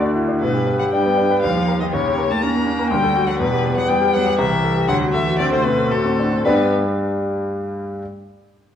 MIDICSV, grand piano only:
0, 0, Header, 1, 2, 480
1, 0, Start_track
1, 0, Key_signature, 1, "major"
1, 0, Tempo, 510204
1, 389, Time_signature, 3, 2, 24, 8
1, 1819, Tempo, 493827
1, 5179, Tempo, 519031
1, 8289, End_track
2, 0, Start_track
2, 0, Title_t, "Grand piano"
2, 0, Program_c, 0, 0
2, 0, Control_c, 0, 64, 127
2, 0, Note_on_c, 0, 38, 61
2, 0, Note_on_c, 0, 57, 42
2, 0, Note_on_c, 0, 62, 44
2, 0, Note_on_c, 0, 66, 44
2, 0, Note_on_c, 0, 69, 43
2, 19, Note_off_c, 0, 62, 0
2, 19, Note_on_c, 0, 62, 40
2, 95, Note_off_c, 0, 66, 0
2, 142, Note_on_c, 0, 64, 36
2, 217, Note_off_c, 0, 62, 0
2, 266, Note_off_c, 0, 64, 0
2, 268, Note_on_c, 0, 62, 40
2, 354, Note_off_c, 0, 38, 0
2, 389, Note_off_c, 0, 62, 0
2, 390, Note_on_c, 0, 43, 46
2, 409, Control_c, 0, 64, 0
2, 414, Note_off_c, 0, 57, 0
2, 414, Note_off_c, 0, 69, 0
2, 507, Note_on_c, 0, 67, 40
2, 593, Control_c, 0, 64, 127
2, 633, Note_on_c, 0, 71, 38
2, 701, Note_off_c, 0, 67, 0
2, 751, Note_on_c, 0, 67, 41
2, 823, Note_off_c, 0, 71, 0
2, 876, Note_on_c, 0, 62, 37
2, 941, Note_off_c, 0, 67, 0
2, 993, Note_on_c, 0, 59, 39
2, 1063, Note_off_c, 0, 62, 0
2, 1105, Note_on_c, 0, 62, 38
2, 1181, Note_off_c, 0, 59, 0
2, 1230, Note_on_c, 0, 71, 45
2, 1297, Note_off_c, 0, 62, 0
2, 1317, Note_off_c, 0, 43, 0
2, 1348, Note_off_c, 0, 71, 0
2, 1349, Note_on_c, 0, 39, 50
2, 1364, Control_c, 0, 64, 0
2, 1465, Note_on_c, 0, 67, 40
2, 1490, Control_c, 0, 64, 127
2, 1580, Note_on_c, 0, 70, 39
2, 1654, Note_off_c, 0, 67, 0
2, 1703, Note_on_c, 0, 67, 40
2, 1770, Note_off_c, 0, 70, 0
2, 1805, Note_off_c, 0, 39, 0
2, 1819, Note_on_c, 0, 39, 50
2, 1820, Note_off_c, 0, 67, 0
2, 1838, Control_c, 0, 64, 0
2, 1941, Note_on_c, 0, 67, 40
2, 1993, Control_c, 0, 64, 127
2, 2059, Note_on_c, 0, 70, 41
2, 2132, Note_off_c, 0, 67, 0
2, 2185, Note_on_c, 0, 67, 36
2, 2250, Note_off_c, 0, 70, 0
2, 2304, Note_on_c, 0, 61, 41
2, 2372, Note_off_c, 0, 67, 0
2, 2424, Note_on_c, 0, 58, 39
2, 2490, Note_off_c, 0, 61, 0
2, 2534, Note_on_c, 0, 61, 42
2, 2608, Note_off_c, 0, 58, 0
2, 2655, Note_on_c, 0, 70, 45
2, 2721, Note_off_c, 0, 61, 0
2, 2740, Note_off_c, 0, 39, 0
2, 2770, Note_off_c, 0, 70, 0
2, 2770, Note_on_c, 0, 38, 52
2, 2785, Control_c, 0, 64, 0
2, 2888, Note_on_c, 0, 69, 43
2, 2936, Control_c, 0, 64, 127
2, 3009, Note_on_c, 0, 66, 45
2, 3074, Note_off_c, 0, 69, 0
2, 3126, Note_on_c, 0, 69, 41
2, 3195, Note_off_c, 0, 66, 0
2, 3227, Note_off_c, 0, 38, 0
2, 3243, Note_off_c, 0, 69, 0
2, 3244, Note_on_c, 0, 40, 54
2, 3257, Control_c, 0, 64, 0
2, 3367, Note_on_c, 0, 67, 43
2, 3411, Control_c, 0, 64, 127
2, 3488, Note_on_c, 0, 59, 46
2, 3556, Note_off_c, 0, 67, 0
2, 3603, Note_on_c, 0, 67, 44
2, 3676, Note_off_c, 0, 59, 0
2, 3721, Note_on_c, 0, 59, 46
2, 3793, Note_off_c, 0, 67, 0
2, 3841, Note_on_c, 0, 55, 47
2, 3912, Note_off_c, 0, 59, 0
2, 3964, Note_on_c, 0, 59, 51
2, 4033, Note_off_c, 0, 55, 0
2, 4086, Note_on_c, 0, 67, 56
2, 4155, Note_off_c, 0, 59, 0
2, 4174, Note_off_c, 0, 40, 0
2, 4204, Note_off_c, 0, 67, 0
2, 4204, Note_on_c, 0, 36, 62
2, 4218, Control_c, 0, 64, 0
2, 4326, Note_on_c, 0, 67, 44
2, 4380, Control_c, 0, 64, 127
2, 4449, Note_on_c, 0, 69, 43
2, 4519, Note_off_c, 0, 67, 0
2, 4568, Note_on_c, 0, 67, 49
2, 4641, Note_off_c, 0, 69, 0
2, 4675, Note_off_c, 0, 36, 0
2, 4689, Note_off_c, 0, 67, 0
2, 4689, Note_on_c, 0, 38, 64
2, 4706, Control_c, 0, 64, 0
2, 4813, Note_on_c, 0, 66, 44
2, 4887, Control_c, 0, 64, 127
2, 4932, Note_on_c, 0, 69, 45
2, 5007, Note_off_c, 0, 66, 0
2, 5063, Note_on_c, 0, 66, 42
2, 5129, Note_off_c, 0, 69, 0
2, 5186, Note_on_c, 0, 60, 46
2, 5253, Note_off_c, 0, 66, 0
2, 5304, Note_on_c, 0, 57, 46
2, 5373, Note_off_c, 0, 60, 0
2, 5422, Note_on_c, 0, 60, 41
2, 5494, Note_off_c, 0, 57, 0
2, 5541, Note_on_c, 0, 69, 42
2, 5615, Note_off_c, 0, 60, 0
2, 5666, Note_on_c, 0, 66, 42
2, 5737, Note_off_c, 0, 69, 0
2, 5790, Note_on_c, 0, 60, 36
2, 5864, Note_off_c, 0, 66, 0
2, 5924, Note_on_c, 0, 62, 30
2, 5990, Note_off_c, 0, 60, 0
2, 6043, Note_off_c, 0, 62, 0
2, 6046, Note_on_c, 0, 60, 31
2, 6122, Note_off_c, 0, 38, 0
2, 6162, Note_off_c, 0, 60, 0
2, 6165, Note_on_c, 0, 67, 49
2, 6165, Note_on_c, 0, 74, 49
2, 6166, Note_on_c, 0, 43, 47
2, 6166, Note_on_c, 0, 62, 50
2, 6167, Note_on_c, 0, 55, 48
2, 6177, Control_c, 0, 64, 0
2, 6347, Control_c, 0, 64, 127
2, 6426, Note_off_c, 0, 43, 0
2, 6426, Note_off_c, 0, 67, 0
2, 6426, Note_off_c, 0, 74, 0
2, 6427, Note_off_c, 0, 55, 0
2, 6427, Note_off_c, 0, 62, 0
2, 7608, Control_c, 0, 64, 0
2, 8289, End_track
0, 0, End_of_file